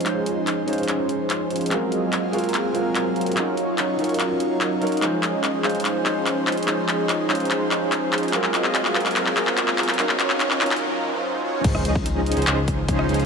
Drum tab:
CC |--------------------------------|--------------------------------|--------------------------------|--------------------------------|
HH |x---x---x---xxxxx---x---x---xxxx|x---x---x---xxxxx---x---x---xxxx|x---x---x---xxxxx---x---x---xxxx|x---x---x---xxxxx---x---x---xxxx|
CP |x-------x-------x-------x-------|x-------x-------x-------x-------|x-------x-------x-------x-------|x---x---x---x---x---x---x---x---|
SD |--------------------------------|--------------------------------|--------------------------------|--------------------------------|
BD |--------------------------------|--------------------------------|--------------------------------|--------------------------------|

CC |--------------------------------|--------------------------------|--------------------------------|x-------------------------------|
HH |x---x---x---xxxxx---x---x---xxxx|x---x---x---xxxxx---x---x---xxxx|x---x---x---xxxx----------------|x---x---x---xxxxx---x---x---xxx-|
CP |x---x---x---x---x---x---x---x---|x-x-x-x-x-x-x-x-x-x-x-x-x-x-x-x-|x-x-x-x-x-x-x-x-----------------|----------------x---------------|
SD |--------------------------------|--------------------------------|--------------------------------|--r-----------------------r-----|
BD |--------------------------------|--------------------------------|--------------------------------|o-----o-------------o---o-------|